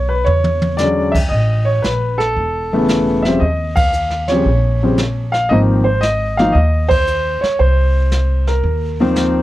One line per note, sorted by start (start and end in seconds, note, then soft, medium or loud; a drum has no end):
0.00 0.23 B1 medium
0.00 0.11 C#5 loud
0.09 0.25 B4 medium
0.25 1.28 E2 medium
0.25 0.75 C#5 medium
0.25 mid tom soft
0.44 high tom soft
0.62 high tom medium
0.77 1.12 D3 medium
0.77 1.12 F#3 medium
0.77 1.13 G#3 medium
0.77 1.13 C#4 medium
0.77 1.12 D5 medium
0.77 snare medium
0.77 hi-hat pedal medium
1.12 1.17 E5 medium
1.12 kick medium
1.12 crash medium
1.29 1.80 A1 medium
1.29 1.68 D#5 medium
1.29 brush sweep soft
1.29 kick soft
1.65 1.84 C#5 medium
1.82 2.33 A#1 medium
1.82 2.17 B4 medium
1.82 snare medium
1.82 hi-hat pedal medium
2.18 3.20 A4 medium
2.18 snare soft
2.36 3.38 E1 medium
2.36 brush sweep soft
2.36 kick soft
2.73 3.22 C#3 medium
2.73 3.22 E3 medium
2.73 3.22 A3 medium
2.73 3.22 B3 medium
2.88 snare medium
2.88 hi-hat pedal medium
3.22 3.40 C#3 medium
3.22 3.40 F3 medium
3.22 3.41 G3 medium
3.22 3.40 C4 medium
3.22 3.39 E5 medium
3.22 snare soft
3.40 4.42 D#2 medium
3.40 3.74 D#5 medium
3.40 brush sweep soft
3.40 kick soft
3.75 4.31 F5 loud
3.75 kick medium
3.75 ride medium
3.93 hi-hat pedal medium
4.10 snare soft
4.28 4.45 C#3 medium
4.28 4.46 F3 medium
4.28 4.46 G3 medium
4.28 4.46 C4 medium
4.28 5.37 C#5 medium
4.28 snare soft
4.45 5.47 A#1 medium
4.45 brush sweep soft
4.45 kick soft
4.83 4.97 C#3 medium
4.83 4.97 F3 medium
4.83 4.98 G3 medium
4.83 4.98 C4 medium
4.97 snare medium
4.97 hi-hat pedal soft
5.32 5.49 F5 loud
5.32 snare soft
5.49 6.51 G#1 medium
5.49 5.83 D#3 medium
5.49 5.84 F3 medium
5.49 5.84 A#3 medium
5.49 5.84 C4 medium
5.49 5.57 D#5 loud
5.49 brush sweep soft
5.49 kick soft
5.84 6.01 C5 medium
6.01 6.35 D#5 loud
6.01 snare medium
6.01 hi-hat pedal soft
6.37 6.54 D#3 medium
6.37 6.55 F3 medium
6.37 6.54 A#3 medium
6.37 6.55 D#4 medium
6.37 6.55 F5 medium
6.37 snare soft
6.52 7.40 D#2 medium
6.52 6.91 D#5 medium
6.52 brush sweep soft
6.52 kick soft
6.89 7.39 C5 loud
6.89 kick medium
6.89 ride medium
7.07 hi-hat pedal medium
7.41 7.60 C#5 medium
7.41 muted upright bass stroke soft
7.41 snare soft
7.59 8.61 C2 medium
7.59 8.51 C5 medium
7.59 brush sweep soft
7.59 kick soft
8.11 snare medium
8.11 hi-hat pedal soft
8.47 9.13 A#4 medium
8.47 snare soft
8.64 9.42 D#2 medium
8.64 brush sweep soft
8.64 kick soft
9.00 9.42 D#3 medium
9.00 9.42 F3 medium
9.00 9.42 A#3 medium
9.00 9.42 C4 medium
9.16 snare medium
9.16 hi-hat pedal medium